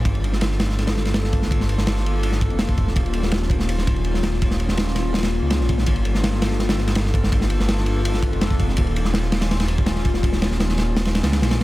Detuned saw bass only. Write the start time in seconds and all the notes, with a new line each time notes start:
0.05 G1
1.78 G1
2.51 F1
2.96 D#1
4.69 D#1
5.42 C#2
5.60 A#1
5.87 G1
7.60 G1
8.32 F1
8.78 D#1
10.51 D#1
11.24 C#2
11.42 A#1